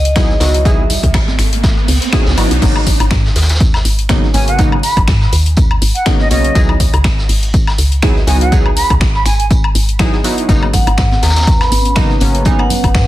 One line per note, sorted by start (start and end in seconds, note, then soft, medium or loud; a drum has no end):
0.00 0.36 C#2 medium
0.00 0.40 D#5 loud
0.00 riser medium
0.05 closed hi-hat medium
0.16 0.32 F#3 medium
0.16 0.32 B3 medium
0.16 0.33 D#4 medium
0.16 0.33 E4 medium
0.16 0.33 G#4 loud
0.16 finger snap loud
0.16 kick loud
0.16 snare loud
0.16 closed hi-hat medium
0.16 tambourine medium
0.30 snare soft
0.40 0.98 C#2 loud
0.40 0.62 F#3 medium
0.40 0.62 B3 medium
0.40 0.63 D#4 medium
0.40 0.63 E4 medium
0.40 0.63 F#4 medium
0.40 0.64 D#5 medium
0.40 snare loud
0.40 open hi-hat medium
0.40 tambourine medium
0.54 closed hi-hat medium
0.65 0.82 F#3 medium
0.65 0.82 B3 medium
0.65 0.82 D#4 medium
0.65 0.82 E4 medium
0.65 0.82 G#4 loud
0.65 1.11 E5 medium
0.65 kick loud
0.65 closed hi-hat medium
0.65 tambourine medium
0.90 open hi-hat loud
0.90 tambourine medium
0.90 low conga medium
1.03 1.16 C#2 medium
1.03 kick medium
1.03 closed hi-hat medium
1.14 1.33 G#1 loud
1.14 finger snap loud
1.14 kick loud
1.14 snare loud
1.14 closed hi-hat medium
1.14 tambourine medium
1.14 high woodblock medium
1.27 snare soft
1.27 high conga medium
1.39 1.84 G#1 medium
1.39 finger snap medium
1.39 open hi-hat medium
1.39 tambourine medium
1.53 closed hi-hat medium
1.63 kick loud
1.63 snare loud
1.63 closed hi-hat medium
1.63 tambourine medium
1.77 snare soft
1.88 1.98 C#2 loud
1.88 open hi-hat medium
1.88 open hi-hat loud
1.88 high conga medium
2.02 closed hi-hat medium
2.12 2.29 F#3 medium
2.12 2.29 B3 medium
2.12 2.29 D#4 medium
2.12 2.29 E4 medium
2.12 2.30 G#4 loud
2.12 finger snap loud
2.12 kick loud
2.12 snare loud
2.12 closed hi-hat medium
2.12 tambourine medium
2.26 2.35 C#2 medium
2.26 snare loud
2.26 tambourine medium
2.37 2.48 G#1 medium
2.37 2.59 F#3 medium
2.37 2.59 B3 medium
2.37 2.59 D#4 medium
2.37 2.60 E4 medium
2.37 2.60 F#4 medium
2.37 open hi-hat medium
2.37 tambourine medium
2.37 high woodblock medium
2.51 2.59 B1 medium
2.51 closed hi-hat medium
2.62 2.95 G#1 loud
2.62 2.78 C#3 medium
2.62 2.78 F#3 medium
2.62 2.78 A#3 medium
2.62 2.79 B3 medium
2.62 2.79 D#4 loud
2.62 kick loud
2.62 closed hi-hat medium
2.62 tambourine medium
2.62 crash loud
2.76 high woodblock medium
2.87 kick medium
2.87 open hi-hat loud
2.87 tambourine medium
3.00 3.13 G#1 loud
3.00 closed hi-hat medium
3.00 high woodblock medium
3.11 3.30 G#2 loud
3.11 finger snap loud
3.11 kick loud
3.11 snare loud
3.11 closed hi-hat soft
3.11 tambourine medium
3.25 snare medium
3.36 3.80 D#2 medium
3.36 snare medium
3.36 open hi-hat medium
3.36 tambourine medium
3.42 snare medium
3.42 tambourine medium
3.49 snare medium
3.49 closed hi-hat medium
3.49 tambourine medium
3.55 snare medium
3.55 tambourine medium
3.60 kick loud
3.60 closed hi-hat medium
3.74 snare medium
3.74 high woodblock medium
3.85 4.30 G#1 medium
3.85 open hi-hat loud
3.85 tambourine medium
3.99 closed hi-hat medium
4.09 4.26 C#3 medium
4.09 4.26 F#3 medium
4.09 4.26 A#3 medium
4.09 4.26 B3 medium
4.09 4.26 D#4 loud
4.09 finger snap loud
4.09 kick loud
4.09 snare loud
4.09 closed hi-hat medium
4.09 tambourine loud
4.23 snare soft
4.34 4.91 G#1 medium
4.34 4.56 C#3 medium
4.34 4.56 F#3 medium
4.34 4.56 A#3 medium
4.34 4.56 B3 medium
4.34 4.56 C#4 medium
4.34 4.45 G#5 medium
4.34 open hi-hat medium
4.34 tambourine medium
4.48 4.61 F#5 medium
4.48 closed hi-hat medium
4.58 4.75 C#3 medium
4.58 4.75 F#3 medium
4.58 4.75 A#3 medium
4.58 4.75 B3 medium
4.58 4.75 D#4 loud
4.58 kick loud
4.58 closed hi-hat medium
4.58 tambourine medium
4.72 high woodblock medium
4.83 4.99 B5 medium
4.83 open hi-hat loud
4.83 tambourine medium
4.97 5.09 G#1 loud
4.97 kick medium
4.97 closed hi-hat medium
4.97 high woodblock medium
5.08 5.27 G#2 loud
5.08 finger snap loud
5.08 kick loud
5.08 snare loud
5.08 closed hi-hat soft
5.08 tambourine medium
5.21 snare medium
5.32 5.77 D#2 medium
5.32 open hi-hat medium
5.32 tambourine medium
5.46 closed hi-hat medium
5.57 kick loud
5.57 closed hi-hat medium
5.57 tambourine loud
5.71 high woodblock medium
5.82 5.92 G#1 loud
5.82 open hi-hat loud
5.82 tambourine medium
5.95 6.09 F#5 medium
5.95 closed hi-hat medium
6.06 6.22 C#3 medium
6.06 6.23 F#3 medium
6.06 6.23 A#3 medium
6.06 6.23 B3 medium
6.06 6.23 D#4 loud
6.06 finger snap loud
6.06 kick loud
6.06 snare loud
6.06 closed hi-hat medium
6.06 tambourine medium
6.19 6.29 D#5 medium
6.19 snare soft
6.30 6.50 B1 medium
6.30 6.53 C#3 medium
6.30 6.53 F#3 medium
6.30 6.53 A#3 medium
6.30 6.53 B3 medium
6.30 6.53 C#4 medium
6.30 6.61 D#5 medium
6.30 open hi-hat medium
6.30 tambourine medium
6.45 closed hi-hat medium
6.55 6.88 C#2 loud
6.55 6.72 F#3 medium
6.55 6.72 B3 medium
6.55 6.72 D#4 medium
6.55 6.72 E4 medium
6.55 6.72 G#4 loud
6.55 kick loud
6.55 closed hi-hat medium
6.55 tambourine medium
6.69 high woodblock medium
6.80 kick medium
6.80 open hi-hat loud
6.80 tambourine medium
6.94 7.06 C#2 loud
6.94 closed hi-hat medium
6.94 high woodblock medium
7.04 7.24 G#1 loud
7.04 finger snap loud
7.04 kick loud
7.04 snare loud
7.04 closed hi-hat soft
7.04 tambourine medium
7.18 snare soft
7.29 7.74 G#1 medium
7.29 open hi-hat medium
7.29 open hi-hat loud
7.43 closed hi-hat medium
7.54 kick loud
7.54 closed hi-hat medium
7.54 tambourine medium
7.67 snare medium
7.67 high woodblock medium
7.78 8.23 C#2 medium
7.78 open hi-hat loud
7.78 tambourine medium
7.92 closed hi-hat medium
8.02 8.19 F#3 medium
8.02 8.19 B3 medium
8.02 8.19 D#4 medium
8.02 8.20 E4 medium
8.02 8.20 G#4 loud
8.02 finger snap loud
8.02 kick loud
8.02 snare loud
8.02 closed hi-hat medium
8.02 tambourine medium
8.16 snare soft
8.27 8.85 C#2 loud
8.27 8.49 F#3 medium
8.27 8.49 B3 medium
8.27 8.49 D#4 medium
8.27 8.50 E4 medium
8.27 8.50 F#4 medium
8.27 8.38 G#5 medium
8.27 open hi-hat loud
8.27 tambourine medium
8.41 8.54 F#5 medium
8.41 closed hi-hat medium
8.52 8.68 F#3 medium
8.52 8.69 B3 medium
8.52 8.69 D#4 medium
8.52 8.69 E4 medium
8.52 8.69 G#4 loud
8.52 kick loud
8.52 closed hi-hat medium
8.52 tambourine medium
8.66 high woodblock medium
8.76 8.92 B5 loud
8.76 open hi-hat loud
8.76 tambourine medium
8.90 9.03 C#2 loud
8.90 kick medium
8.90 closed hi-hat medium
8.90 high woodblock medium
9.00 9.20 G#1 loud
9.00 finger snap loud
9.00 kick loud
9.00 snare loud
9.00 closed hi-hat soft
9.00 tambourine medium
9.15 9.24 B5 medium
9.15 snare medium
9.26 9.71 G#1 medium
9.26 9.35 G#5 medium
9.26 finger snap medium
9.26 open hi-hat loud
9.26 tambourine medium
9.40 9.47 G#5 medium
9.40 closed hi-hat medium
9.51 kick loud
9.51 closed hi-hat medium
9.51 tambourine medium
9.64 high woodblock medium
9.75 10.32 G#1 medium
9.75 open hi-hat loud
9.75 tambourine medium
9.89 closed hi-hat medium
9.99 10.16 F#3 medium
9.99 10.16 B3 medium
9.99 10.16 D#4 medium
9.99 10.16 E4 medium
9.99 10.16 G#4 loud
9.99 finger snap loud
9.99 kick loud
9.99 snare loud
9.99 closed hi-hat medium
9.99 tambourine medium
10.13 snare medium
10.24 10.46 F#3 medium
10.24 10.46 B3 medium
10.24 10.46 D#4 medium
10.24 10.46 E4 medium
10.24 10.46 F#4 medium
10.24 open hi-hat medium
10.24 tambourine medium
10.38 closed hi-hat medium
10.49 10.82 G#1 loud
10.49 10.65 C#3 medium
10.49 10.65 F#3 medium
10.49 10.65 A#3 medium
10.49 13.07 B3 medium
10.49 10.65 B3 medium
10.49 13.07 C#4 medium
10.49 10.66 D#4 loud
10.49 13.07 F#4 medium
10.49 13.07 B4 medium
10.49 kick loud
10.49 closed hi-hat medium
10.49 tambourine medium
10.63 high woodblock medium
10.73 11.19 F#5 loud
10.73 kick medium
10.73 open hi-hat loud
10.73 tambourine medium
10.73 low conga medium
10.87 11.00 G#1 loud
10.87 closed hi-hat medium
10.87 high woodblock medium
10.97 11.17 G#2 loud
10.97 finger snap loud
10.97 kick loud
10.97 snare loud
10.97 closed hi-hat soft
10.97 tambourine medium
11.12 snare medium
11.12 high conga medium
11.22 11.67 D#2 medium
11.22 11.62 A#5 loud
11.22 snare medium
11.22 open hi-hat medium
11.22 tambourine medium
11.30 snare medium
11.30 tambourine medium
11.36 snare medium
11.36 closed hi-hat medium
11.36 tambourine medium
11.41 snare medium
11.41 tambourine medium
11.47 kick loud
11.47 closed hi-hat medium
11.47 tambourine medium
11.61 11.94 B5 loud
11.61 snare medium
11.61 high woodblock medium
11.72 12.16 G#1 medium
11.72 open hi-hat loud
11.72 tambourine medium
11.72 high conga medium
11.85 closed hi-hat soft
11.95 12.13 C#3 medium
11.95 12.13 F#3 medium
11.95 12.13 A#3 medium
11.95 12.13 B3 medium
11.95 12.13 D#4 loud
11.95 12.42 A#5 loud
11.95 finger snap loud
11.95 kick loud
11.95 snare loud
11.95 closed hi-hat medium
11.95 tambourine medium
12.09 snare soft
12.20 12.78 G#1 loud
12.20 12.43 C#3 medium
12.20 12.43 F#3 medium
12.20 12.43 A#3 medium
12.20 12.43 B3 medium
12.20 12.43 C#4 medium
12.20 open hi-hat medium
12.20 tambourine medium
12.35 closed hi-hat medium
12.45 12.62 C#3 medium
12.45 12.62 F#3 medium
12.45 12.62 A#3 medium
12.45 12.62 B3 medium
12.45 12.62 D#4 loud
12.45 12.58 G#5 loud
12.45 kick loud
12.45 closed hi-hat medium
12.45 tambourine medium
12.59 12.92 F#5 loud
12.59 high woodblock medium
12.70 open hi-hat loud
12.70 tambourine medium
12.70 low conga medium
12.84 12.96 G#1 loud
12.84 kick medium
12.84 closed hi-hat medium
12.84 high woodblock medium
12.94 13.07 G#2 loud
12.94 13.07 F#5 medium
12.94 finger snap loud
12.94 kick loud
12.94 snare loud
12.94 closed hi-hat soft
12.94 tambourine loud